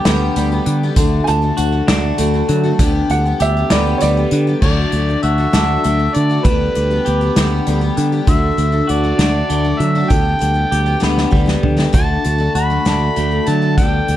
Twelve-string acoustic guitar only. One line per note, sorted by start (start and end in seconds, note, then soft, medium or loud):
0.06 0.36 D3 medium
0.06 0.37 G3 loud
0.06 0.37 B3 loud
0.06 0.37 G4 loud
0.37 0.52 D3 medium
0.37 0.52 G3 medium
0.37 0.52 B3 medium
0.37 0.51 G4 medium
0.52 0.83 G3 medium
0.52 0.83 B3 medium
0.52 0.82 G4 medium
0.83 0.97 G3 medium
0.83 0.98 B3 medium
0.83 0.98 G4 medium
0.97 1.27 D3 medium
0.97 1.28 A3 loud
0.97 1.28 D4 loud
0.97 1.28 F#4 loud
1.28 1.43 D3 medium
1.28 1.42 A3 medium
1.28 1.42 D4 medium
1.28 1.41 F#4 medium
1.42 1.73 A3 medium
1.42 1.72 D4 medium
1.42 1.71 F#4 medium
1.72 1.88 A3 soft
1.72 1.88 D4 medium
1.72 1.88 F#4 medium
1.88 2.17 D3 medium
1.88 2.18 A3 loud
1.88 2.18 D4 loud
1.88 2.19 F#4 medium
2.18 2.34 D3 medium
2.18 2.34 A3 medium
2.18 2.34 D4 medium
2.18 2.33 F#4 medium
2.34 2.65 A3 medium
2.34 2.64 D4 medium
2.34 2.62 F#4 medium
2.64 2.79 A3 medium
2.64 2.80 D4 medium
2.64 2.79 F#4 medium
2.80 3.09 D3 loud
2.80 3.10 G3 loud
2.80 3.10 B3 loud
2.80 3.11 G4 loud
3.10 3.25 D3 medium
3.10 3.26 G3 medium
3.10 3.25 B3 medium
3.10 3.24 G4 medium
3.26 3.57 G3 soft
3.26 3.56 B3 medium
3.26 3.56 G4 medium
3.57 3.70 G3 soft
3.57 3.71 B3 medium
3.57 3.71 G4 medium
3.71 4.00 D3 medium
3.71 4.01 G3 loud
3.71 4.01 B3 medium
3.71 4.02 G4 loud
4.01 4.17 D3 medium
4.01 4.17 G3 medium
4.01 4.17 B3 medium
4.01 4.16 G4 medium
4.17 4.48 G3 soft
4.17 4.47 B3 soft
4.17 4.46 G4 medium
4.47 4.63 G3 soft
4.47 4.63 B3 soft
4.47 4.62 G4 medium
4.63 4.93 D3 medium
4.63 4.93 F#3 medium
4.63 4.93 A3 medium
4.63 4.93 D4 medium
4.63 4.93 F#4 medium
4.94 5.08 F#3 medium
4.94 5.09 A3 medium
4.94 5.09 D4 medium
4.94 5.07 F#4 medium
5.09 5.39 A3 soft
5.09 5.38 D4 medium
5.09 5.37 F#4 medium
5.38 5.53 A3 soft
5.38 5.53 D4 medium
5.38 5.53 F#4 medium
5.53 5.84 D3 medium
5.53 5.83 F#3 medium
5.53 5.83 A3 medium
5.53 5.84 D4 medium
5.53 5.84 F#4 medium
5.84 5.99 F#3 medium
5.84 5.99 A3 medium
5.84 5.99 D4 medium
5.84 5.98 F#4 medium
5.99 6.30 A3 soft
5.99 6.30 D4 soft
5.99 6.28 F#4 medium
6.30 6.44 A3 soft
6.30 6.45 D4 medium
6.30 6.45 F#4 medium
6.44 6.74 D3 medium
6.44 6.75 G3 medium
6.44 6.75 B3 medium
6.44 6.76 G4 medium
6.75 6.91 D3 medium
6.75 6.91 G3 medium
6.75 6.90 B3 medium
6.75 6.89 G4 medium
6.91 7.21 G3 soft
6.91 7.21 B3 medium
6.91 7.20 G4 medium
7.21 7.35 G3 medium
7.21 7.36 B3 medium
7.21 7.36 G4 medium
7.36 7.65 D3 medium
7.36 7.66 G3 medium
7.36 7.67 B3 loud
7.36 7.67 G4 loud
7.67 7.82 D3 medium
7.67 7.82 G3 medium
7.67 7.81 B3 medium
7.67 7.80 G4 medium
7.81 8.13 G3 soft
7.81 8.12 B3 medium
7.81 8.11 G4 medium
8.12 8.28 G3 soft
8.12 8.27 B3 medium
8.12 8.28 G4 medium
8.27 8.56 D3 medium
8.27 8.57 A3 medium
8.27 8.57 D4 medium
8.27 8.58 F#4 medium
8.57 8.73 D3 medium
8.57 8.72 A3 medium
8.57 8.72 D4 medium
8.57 8.71 F#4 medium
8.72 9.04 A3 medium
8.72 9.03 D4 soft
8.72 9.02 F#4 medium
9.04 9.18 A3 soft
9.04 9.19 D4 medium
9.04 9.18 F#4 medium
9.19 9.48 D3 medium
9.19 9.49 A3 medium
9.19 9.50 D4 medium
9.19 9.50 F#4 medium
9.50 9.65 D3 medium
9.50 9.65 A3 medium
9.50 9.64 D4 medium
9.50 9.63 F#4 medium
9.65 9.96 A3 soft
9.65 9.95 D4 soft
9.65 9.94 F#4 medium
9.95 10.10 A3 soft
9.95 10.10 D4 medium
9.95 10.11 F#4 medium
10.10 10.38 D3 medium
10.10 10.39 G3 medium
10.10 10.39 B3 medium
10.10 10.40 G4 medium
10.39 10.55 D3 medium
10.39 10.55 G3 medium
10.39 10.54 B3 medium
10.39 10.53 G4 medium
10.54 10.86 G3 soft
10.54 10.85 B3 medium
10.54 10.85 G4 medium
10.86 10.99 G3 medium
10.86 10.99 B3 medium
10.86 11.00 G4 medium
11.00 11.29 D3 loud
11.00 11.30 G3 medium
11.00 11.30 B3 loud
11.00 11.31 G4 loud
11.30 11.47 D3 medium
11.30 11.46 G3 medium
11.30 11.46 B3 medium
11.30 11.45 G4 medium
11.46 11.78 G3 soft
11.46 11.76 B3 medium
11.46 11.75 G4 medium
11.77 11.92 G3 soft
11.77 11.92 B3 medium
11.77 11.93 G4 medium
11.92 12.23 D3 medium
11.92 12.23 A3 medium
11.92 12.24 D4 medium
11.92 12.25 F#4 medium
12.24 12.40 D3 medium
12.24 12.39 A3 medium
12.24 12.39 D4 medium
12.24 12.37 F#4 medium
12.38 12.71 A3 medium
12.38 12.70 D4 medium
12.38 12.69 F#4 medium
12.70 12.85 A3 soft
12.70 12.85 D4 soft
12.70 12.86 F#4 medium
12.85 13.15 D3 medium
12.85 13.15 A3 medium
12.85 13.16 D4 medium
12.85 13.16 F#4 medium
13.16 13.32 D3 medium
13.16 13.32 A3 medium
13.16 13.31 D4 medium
13.16 13.30 F#4 medium
13.31 13.62 A3 soft
13.31 13.61 D4 soft
13.31 13.60 F#4 medium
13.62 13.78 A3 soft
13.62 13.78 D4 soft
13.62 13.77 F#4 medium
13.78 14.07 D3 medium
13.78 14.08 G3 medium
13.78 14.09 B3 medium
13.78 14.09 G4 loud
14.08 14.17 D3 medium
14.08 14.17 G3 medium
14.08 14.17 B3 medium
14.08 14.17 G4 medium